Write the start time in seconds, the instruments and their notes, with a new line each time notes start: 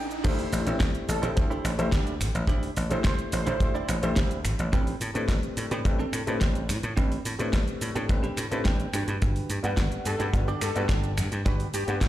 Already playing: slap bass A1, clean electric guitar G5, riser
0.11 cabasa
0.24 slap bass D2, grand piano A3 D4 E4 G4 C5, clean electric guitar D4 E4 G4 C5, kick, closed hi-hat, crash, cabasa
0.39 open hi-hat, cabasa
0.52 slap bass A1, open hi-hat, cabasa
0.65 slap bass A1, grand piano A3 C4 D4 E4 G4, muted clean electric guitar stroke, closed hi-hat, cabasa
0.80 slap bass D2, finger snap, muted clean electric guitar stroke, kick, snare, closed hi-hat, cabasa
0.95 closed hi-hat, cabasa
1.08 slap bass A1, analog synth lead A4, open hi-hat, cabasa
1.22 slap bass A1, clean electric guitar D4 E4 G4 C5, closed hi-hat, cabasa
1.36 slap bass D2, grand piano A3 D4 E4 G4 C5, kick, closed hi-hat, cabasa
1.50 clean electric guitar D4 E4 G4 C5, cabasa
1.64 slap bass A1, finger snap, open hi-hat, cabasa
1.78 slap bass A1, grand piano A3 D4 E4 G4 C5, closed hi-hat, cabasa
1.92 slap bass D2, clean electric guitar D4 E4 G4 D5, kick, snare, closed hi-hat, cabasa
2.07 closed hi-hat, cabasa
2.21 slap bass A1, finger snap, open hi-hat, cabasa
2.34 slap bass A1, muted clean electric guitar stroke, closed hi-hat, cabasa
2.47 slap bass D2, clean electric guitar D4 E4 G4 C5, kick, closed hi-hat, cabasa
2.63 open hi-hat, cabasa
2.77 slap bass A1, open hi-hat, cabasa
2.90 slap bass A1, grand piano A3 D4 E4 G4 C5, analog synth lead C5, muted clean electric guitar stroke, closed hi-hat, cabasa
3.04 slap bass D2, analog synth lead C5, finger snap, muted clean electric guitar stroke, kick, snare, closed hi-hat, cabasa
3.19 closed hi-hat, cabasa
3.32 slap bass A1, analog synth lead C5, open hi-hat, cabasa
3.46 slap bass A1, clean electric guitar D4 E4 G4 C5, closed hi-hat, cabasa
3.60 slap bass D2, grand piano A3 D4 E4 G4 C5, kick, closed hi-hat, cabasa
3.75 clean electric guitar D4 E4 G4 D5, cabasa
3.89 slap bass A1, finger snap, open hi-hat, cabasa
4.02 slap bass A1, grand piano A3 D4 E4 G4 C5, closed hi-hat, cabasa
4.16 slap bass D2, clean electric guitar D4 E4 G4 C5, kick, snare, closed hi-hat, cabasa
4.31 closed hi-hat, cabasa
4.45 slap bass A1, finger snap, open hi-hat, cabasa
4.59 slap bass A1, muted clean electric guitar stroke, closed hi-hat, cabasa
4.73 slap bass A1, clean electric guitar C4 D4 G4 B4, kick, closed hi-hat, cabasa
4.87 open hi-hat, cabasa
5.01 slap bass A2, open hi-hat, cabasa
5.14 slap bass A2, grand piano A3 C4 D4 G4 B4, muted clean electric guitar stroke, closed hi-hat, cabasa
5.29 slap bass A1, finger snap, muted clean electric guitar stroke, kick, snare, closed hi-hat, cabasa
5.43 closed hi-hat, cabasa
5.57 slap bass A2, open hi-hat, cabasa
5.71 slap bass A2, clean electric guitar C4 D4 G4 B4, closed hi-hat, cabasa
5.84 slap bass A1, grand piano A3 C4 D4 G4 B4, kick, closed hi-hat, cabasa
5.99 clean electric guitar C4 D4 G4 A4, cabasa
6.13 slap bass A2, finger snap, open hi-hat, cabasa
6.27 slap bass A2, grand piano A3 C4 D4 G4 B4, closed hi-hat, cabasa
6.41 slap bass A1, clean electric guitar C4 D4 G4 C5, kick, snare, closed hi-hat, cabasa
6.55 closed hi-hat, cabasa
6.69 slap bass A2, finger snap, open hi-hat, cabasa
6.83 slap bass A2, muted clean electric guitar stroke, closed hi-hat, cabasa
6.97 slap bass A1, clean electric guitar C4 D4 G4 B4, kick, closed hi-hat, cabasa
7.12 open hi-hat, cabasa
7.25 slap bass A2, open hi-hat, cabasa
7.39 slap bass A2, grand piano A3 C4 D4 G4 B4, muted clean electric guitar stroke, closed hi-hat, cabasa
7.53 slap bass A1, finger snap, muted clean electric guitar stroke, kick, snare, closed hi-hat, cabasa
7.68 closed hi-hat, cabasa
7.81 slap bass A2, open hi-hat, cabasa
7.95 slap bass A2, clean electric guitar C4 D4 G4 A4, closed hi-hat, cabasa
8.09 slap bass A1, grand piano A3 C4 D4 G4 B4, kick, closed hi-hat, cabasa
8.23 clean electric guitar C4 D4 G4 B4, closed hi-hat, cabasa
8.37 slap bass A2, finger snap, open hi-hat, cabasa
8.51 slap bass A2, grand piano A3 C4 D4 G4 B4, closed hi-hat, cabasa
8.65 slap bass A1, clean electric guitar C4 D4 G4 B4 G5, kick, snare, closed hi-hat, cabasa
8.80 closed hi-hat, cabasa
8.94 slap bass G2, clean electric guitar D4 F#4 G4 B4, finger snap, open hi-hat, cabasa
9.08 slap bass G2, closed hi-hat, cabasa
9.22 slap bass G1, kick, closed hi-hat, cabasa
9.36 open hi-hat, cabasa
9.50 slap bass G2, open hi-hat, cabasa
9.63 slap bass G2, grand piano G3 B3 D4 B4 F#5, muted clean electric guitar stroke, closed hi-hat, cabasa
9.77 slap bass G1, finger snap, muted clean electric guitar stroke, kick, snare, closed hi-hat, cabasa
9.92 closed hi-hat, cabasa
10.05 slap bass G2, analog synth lead A4, open hi-hat, cabasa
10.19 slap bass G2, clean electric guitar D4 F#4 G4 B4, closed hi-hat, cabasa
10.33 slap bass G1, grand piano G3 B3 D4 F#4 B4, kick, closed hi-hat, cabasa
10.48 clean electric guitar D4 F#4 G4 D5, cabasa
10.61 slap bass G2, analog synth lead A4, finger snap, open hi-hat, cabasa
10.75 slap bass G2, grand piano G3 B3 D4 F#4 B4, closed hi-hat, cabasa
10.89 slap bass G1, clean electric guitar D4 F#4 G4 A4, kick, snare, closed hi-hat, cabasa
11.04 closed hi-hat, cabasa
11.18 slap bass G2, finger snap, open hi-hat, cabasa
11.32 slap bass G2, muted clean electric guitar stroke, closed hi-hat, cabasa
11.46 slap bass G1, clean electric guitar D4 F#4 G4 B4, kick, closed hi-hat, cabasa
11.60 open hi-hat, cabasa
11.74 slap bass G2, analog synth lead G4, open hi-hat, cabasa
11.87 slap bass G2, grand piano G3 B3 D4 B4 F#5, muted clean electric guitar stroke, closed hi-hat, cabasa
12.01 slap bass G1, finger snap, muted clean electric guitar stroke, kick, snare, closed hi-hat, cabasa